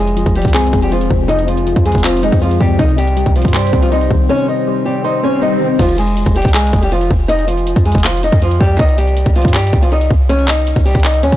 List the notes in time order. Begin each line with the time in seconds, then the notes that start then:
Already playing: F1 F2
0.00 G#3 G#4
0.07 closed hi-hat
0.16 F3, closed hi-hat
0.26 F1, kick, closed hi-hat
0.35 G3 G4, closed hi-hat
0.42 C2, kick, closed hi-hat
0.45 closed hi-hat
0.48 closed hi-hat
0.50 closed hi-hat
0.54 G#3 C4 G#4, clap, closed hi-hat
0.59 closed hi-hat
0.67 closed hi-hat
0.73 F1 G#3, kick, closed hi-hat
0.82 G3 G4, closed hi-hat
0.92 F3 F4, closed hi-hat
1.01 closed hi-hat
1.10 F1 C3, kick
1.28 F2 D#4 D#5, closed hi-hat
1.39 closed hi-hat
1.47 F3 F4, closed hi-hat
1.57 closed hi-hat
1.67 F3, closed hi-hat
1.76 F2, kick, closed hi-hat
1.86 G#3 G#4, closed hi-hat
1.92 F1, kick, closed hi-hat
1.95 closed hi-hat
1.98 closed hi-hat
2.00 closed hi-hat
2.04 F3 C4 F4, clap, closed hi-hat
2.09 closed hi-hat
2.11 closed hi-hat
2.17 closed hi-hat
2.23 G#3 D#4 D#5, closed hi-hat
2.32 F2, kick, closed hi-hat
2.42 F3 F4, closed hi-hat
2.51 closed hi-hat
2.60 F2 C3 G3 G4, kick
2.79 C2 C3 D#4 D#5, kick, closed hi-hat
2.89 closed hi-hat
2.98 G3 G4, closed hi-hat
3.08 closed hi-hat
3.17 G3, closed hi-hat
3.26 C2, kick, closed hi-hat
3.36 F3 F4, closed hi-hat
3.42 G2, kick, closed hi-hat
3.45 closed hi-hat
3.48 closed hi-hat
3.50 G4, closed hi-hat
3.54 G3 C5, clap, closed hi-hat
3.59 closed hi-hat
3.61 closed hi-hat
3.67 closed hi-hat
3.72 C2 C4, kick, closed hi-hat
3.82 F3 F4, closed hi-hat
3.92 G3 D#4 D#5, closed hi-hat
4.01 closed hi-hat
4.11 C2 D#3, kick
4.29 C3 C#4 C#5, swell
4.48 D#4 D#5
4.67 G3
4.85 G3 G4
5.04 D#4 C5 D#5
5.23 C4 C#4 C#5
5.42 G3 D#4 D#5
5.61 D#3
5.79 F1 F3 F4, kick, closed hi-hat, crash
5.89 closed hi-hat
5.98 G#3 G#4, closed hi-hat
6.08 closed hi-hat
6.17 closed hi-hat
6.26 F1, kick, closed hi-hat
6.36 G3 G4, closed hi-hat
6.42 C2, kick, closed hi-hat
6.45 closed hi-hat
6.48 closed hi-hat
6.50 closed hi-hat
6.54 G#3 G#4, clap, closed hi-hat
6.59 closed hi-hat
6.61 closed hi-hat
6.67 closed hi-hat
6.73 F1, kick, closed hi-hat
6.83 G3 G4, closed hi-hat
6.92 F3 F4, closed hi-hat
7.01 closed hi-hat
7.11 F1, kick
7.28 D#4 D#5, closed hi-hat
7.39 closed hi-hat
7.47 F3 F4, closed hi-hat
7.57 closed hi-hat
7.67 closed hi-hat
7.76 F2, kick, closed hi-hat
7.86 G#3 G#4, closed hi-hat
7.92 F1, kick, closed hi-hat
7.95 closed hi-hat
7.98 closed hi-hat
8.00 closed hi-hat
8.04 F3 F4, clap, closed hi-hat
8.09 closed hi-hat
8.11 closed hi-hat
8.17 closed hi-hat
8.23 D#4 D#5, closed hi-hat
8.32 F2, kick, closed hi-hat
8.42 F3 F4, closed hi-hat
8.51 closed hi-hat
8.61 F2 G3 G4, kick
8.79 C2 D#4 D#5, kick, closed hi-hat
8.89 closed hi-hat
8.98 G3 G4, closed hi-hat
9.07 closed hi-hat
9.17 closed hi-hat
9.26 C2, kick, closed hi-hat
9.35 F3 F4, closed hi-hat
9.42 closed hi-hat
9.45 G2, kick, closed hi-hat
9.48 closed hi-hat
9.50 closed hi-hat
9.54 G3 G4, clap, closed hi-hat
9.59 closed hi-hat
9.61 closed hi-hat
9.67 closed hi-hat
9.73 C2, kick, closed hi-hat
9.82 F3 F4, closed hi-hat
9.92 D#4 D#5, closed hi-hat
10.01 closed hi-hat
10.11 C2, kick
10.29 C#4 C#5, closed hi-hat
10.39 closed hi-hat
10.48 D#4 D#5, clap, closed hi-hat
10.58 closed hi-hat
10.67 closed hi-hat
10.76 C2, kick, closed hi-hat
10.85 G3 G4, open hi-hat
10.95 C2, kick, closed hi-hat
11.00 closed hi-hat
11.04 D#4 D#5, clap, closed hi-hat
11.09 closed hi-hat
11.14 closed hi-hat
11.23 D#2 C#4 C#5, closed hi-hat
11.32 G2, kick, closed hi-hat